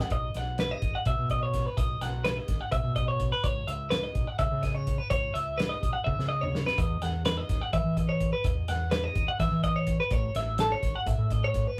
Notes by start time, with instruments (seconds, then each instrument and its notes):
0.00 clean electric guitar F#5, snare
0.10 fingered electric bass B1, clean electric guitar D#5, kick, closed hi-hat
0.34 fingered electric bass B1, clean electric guitar F#5, snare, closed hi-hat
0.58 clean electric guitar B4, snare, closed hi-hat
0.71 clean electric guitar D#5
0.82 fingered electric bass G#1, kick, closed hi-hat
0.95 clean electric guitar F#5
1.05 fingered electric bass B2, clean electric guitar E5, kick, closed hi-hat
1.18 fingered electric bass B2
1.30 clean electric guitar D#5, kick, closed hi-hat
1.43 clean electric guitar C#5
1.54 kick, snare, closed hi-hat
1.66 clean electric guitar B4
1.77 fingered electric bass B1, clean electric guitar D#5, kick, closed hi-hat
2.01 fingered electric bass B1, clean electric guitar F#5, snare, closed hi-hat
2.25 clean electric guitar B4, snare, closed hi-hat
2.37 clean electric guitar D#5
2.48 fingered electric bass G#1, kick, snare, closed hi-hat
2.61 clean electric guitar F#5
2.72 fingered electric bass B2, clean electric guitar E5, kick, closed hi-hat
2.84 fingered electric bass B2
2.96 clean electric guitar D#5, kick, closed hi-hat
3.08 clean electric guitar C#5
3.20 kick, closed hi-hat
3.32 clean electric guitar B4
3.44 fingered electric bass C#2, clean electric guitar C#5, kick, closed hi-hat
3.67 fingered electric bass C#2, clean electric guitar E5, closed hi-hat
3.90 clean electric guitar B4, snare, closed hi-hat
4.03 clean electric guitar D#5
4.15 fingered electric bass B1, kick, closed hi-hat
4.27 clean electric guitar F#5
4.39 fingered electric bass C#3, clean electric guitar E5, kick, closed hi-hat
4.51 fingered electric bass C#3
4.63 clean electric guitar D#5, kick, snare, closed hi-hat
4.75 clean electric guitar C#5
4.87 kick, closed hi-hat
4.98 clean electric guitar B4
5.10 fingered electric bass C#2, clean electric guitar C#5, kick, closed hi-hat
5.34 fingered electric bass C#2, clean electric guitar E5, closed hi-hat
5.58 clean electric guitar B4, snare, closed hi-hat
5.69 clean electric guitar D#5
5.83 fingered electric bass B1, kick, closed hi-hat
5.93 clean electric guitar F#5
6.04 fingered electric bass C#3, clean electric guitar E5, kick
6.19 fingered electric bass C#3, snare
6.29 clean electric guitar D#5
6.41 clean electric guitar C#5, mid tom
6.55 snare
6.66 clean electric guitar B4, snare
6.78 fingered electric bass E2, clean electric guitar D#5, kick, closed hi-hat
7.02 fingered electric bass E2, clean electric guitar F#5, snare, closed hi-hat
7.25 clean electric guitar B4, snare, closed hi-hat
7.37 clean electric guitar D#5
7.49 fingered electric bass D#2, kick, snare, closed hi-hat
7.62 clean electric guitar F#5
7.73 fingered electric bass E3, clean electric guitar E5, kick, closed hi-hat
7.84 fingered electric bass E3
7.97 clean electric guitar D#5, kick, closed hi-hat
8.09 clean electric guitar C#5
8.20 kick, closed hi-hat
8.33 clean electric guitar B4
8.44 fingered electric bass E2, clean electric guitar D#5, kick, closed hi-hat
8.68 fingered electric bass E2, clean electric guitar F#5, snare, closed hi-hat
8.91 clean electric guitar B4, snare, closed hi-hat
9.04 clean electric guitar D#5
9.15 fingered electric bass D#2, kick, closed hi-hat
9.28 clean electric guitar F#5
9.39 fingered electric bass E3, clean electric guitar E5, kick, snare, closed hi-hat
9.51 fingered electric bass E3
9.63 clean electric guitar D#5, kick, closed hi-hat
9.76 clean electric guitar C#5
9.87 kick, closed hi-hat
10.00 clean electric guitar B4
10.11 fingered electric bass A1, clean electric guitar C#5, kick, closed hi-hat
10.35 fingered electric bass A1, clean electric guitar E5, snare, closed hi-hat
10.58 clean electric guitar A4, snare, closed hi-hat
10.72 clean electric guitar C#5
10.82 fingered electric bass G#1, kick, closed hi-hat
10.96 clean electric guitar F#5
11.06 fingered electric bass A2, clean electric guitar E5, kick, closed hi-hat
11.18 fingered electric bass A2
11.30 clean electric guitar D#5, kick, closed hi-hat
11.44 clean electric guitar C#5
11.54 kick, closed hi-hat
11.67 clean electric guitar B4